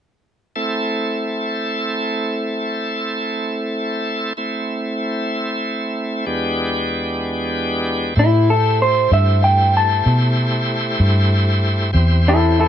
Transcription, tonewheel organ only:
0.56 4.33 A3 soft
0.56 4.33 C4 soft
0.56 4.33 E4 soft
0.56 4.33 A4 soft
4.37 6.26 A3 soft
4.37 6.26 C4 soft
4.37 6.25 E4 soft
6.26 8.15 E2 medium
6.26 8.15 G#3 soft
6.26 8.15 B3 soft
6.26 8.15 D4 soft
6.26 8.14 G4 medium
8.16 11.91 A3 medium
8.16 11.91 E4 medium
8.16 11.91 G4 medium
8.16 11.91 C5 medium
11.93 12.68 C4 medium
11.93 12.68 E4 medium
11.93 12.68 G4 medium
11.93 12.68 C5 medium

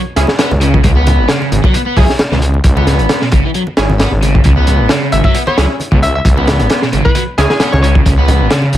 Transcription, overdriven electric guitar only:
0.39 0.50 B3 medium
0.62 0.83 C#3 medium
0.84 0.91 C#3 medium
0.96 1.28 B3 medium
1.29 1.63 C#3 medium
1.64 1.73 F#3 loud
1.74 1.81 B3 medium
1.86 1.96 B3 medium
1.97 2.03 F#3 loud
2.32 2.37 B2 medium
2.77 3.21 B3 medium
3.22 3.27 B2 medium
3.32 3.43 C#3 medium
3.45 3.50 E3 medium
3.55 3.61 F#3 medium
4.00 4.11 B3 medium
4.22 4.44 C#3 medium
4.45 4.52 C#3 medium
4.57 4.89 B3 medium
4.90 5.24 C#3 medium
5.25 5.35 F#3 loud
5.35 5.42 B3 medium
5.47 5.56 B3 medium
5.58 5.64 F#3 loud
5.92 5.98 B2 medium
6.38 6.82 B3 medium
6.82 6.88 B2 medium
6.93 7.04 C#3 medium
7.05 7.11 E3 medium
7.15 7.22 F#3 medium
7.61 7.72 B3 medium
7.83 8.05 C#3 medium
8.06 8.12 C#3 medium
8.18 8.50 B3 medium
8.51 8.78 C#3 medium

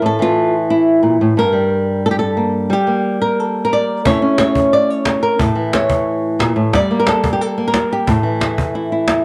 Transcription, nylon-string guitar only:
0.00 1.02 A2 medium
0.00 0.18 E3 medium
0.06 0.54 A4 loud
0.19 1.37 E3 medium
0.19 0.54 F4 loud
0.70 1.37 E4 medium
1.03 1.20 A#2 medium
1.21 1.37 A2 medium
1.37 2.69 G2 medium
1.37 2.05 A#4 loud
1.52 2.68 G3 medium
2.06 2.10 A4 loud
2.11 2.18 G4 medium
2.19 3.05 A4 medium
2.37 2.69 A#3 medium
2.70 4.02 G3 medium
2.70 3.21 G4 loud
2.87 4.03 A#3 medium
3.22 3.40 A#4 loud
3.40 3.64 A4 loud
3.65 4.06 A#4 loud
3.73 4.06 D5 loud
4.05 5.37 A3 medium
4.05 4.22 C#4 medium
4.05 5.38 E4 medium
4.05 4.38 C#5 loud
4.22 5.37 C#4 medium
4.39 4.72 C#5 loud
4.73 4.90 D5 loud
4.90 5.41 C#5 loud
5.23 5.39 A#4 loud
5.39 6.39 A2 medium
5.39 5.73 A4 loud
5.55 6.73 E3 medium
5.74 6.74 C#5 loud
6.39 6.55 A#2 medium
6.56 6.73 A2 medium
6.73 8.05 G3 medium
6.73 7.33 D5 loud
6.91 7.23 A#3 medium
7.00 7.07 A#4 loud
7.08 7.32 A4 medium
7.24 7.56 A#3 medium
7.33 7.41 G4 medium
7.41 7.66 A4 loud
7.58 8.05 A#3 medium
7.68 7.92 A#4 loud
7.93 8.08 G4 medium
8.07 9.25 A2 medium
8.07 9.23 A4 loud
8.23 9.25 E3 medium
8.40 8.74 E4 medium
8.75 8.91 E4 medium
8.92 9.25 E4 medium

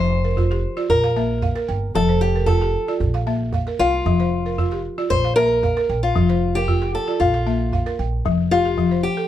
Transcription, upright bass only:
0.00 0.64 F1 loud
0.90 1.49 A#1 medium
1.69 1.89 G1 medium
1.96 2.74 F1 loud
3.00 3.60 A#1 medium
3.79 3.99 C2 medium
4.06 4.85 F1 medium
5.11 5.70 A#1 medium
5.89 6.09 A#1 medium
6.16 6.95 F1 medium
7.20 7.80 A#1 medium
7.99 8.19 A#1 medium
8.26 9.04 F1 medium

